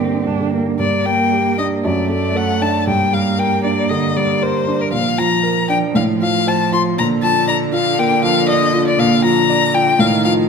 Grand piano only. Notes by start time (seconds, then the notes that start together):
Already playing: G2 D3 D4
0.00 A#3
0.14 D4
0.27 G2
0.40 D3
0.54 A#3
0.67 D4
0.79 G2
1.06 A#3
1.32 G4
1.58 D4
1.84 F#2
2.10 A3
2.35 A4
2.61 D4
2.87 G2
3.13 G3
3.38 A#4
3.64 D4
3.90 D3
4.16 G3
4.42 A#4
4.67 D4
4.93 A#2
5.18 F3
5.43 A#4
5.69 D4
5.95 A2
6.21 F3
6.47 C5
6.72 F4
6.98 A#2
7.23 F3
7.48 D5
7.73 F4
7.99 A#3
8.23 F3
8.48 D5
8.74 F4
8.99 A#2
9.24 F3
9.49 D5
9.74 F4
9.99 A2
10.25 F3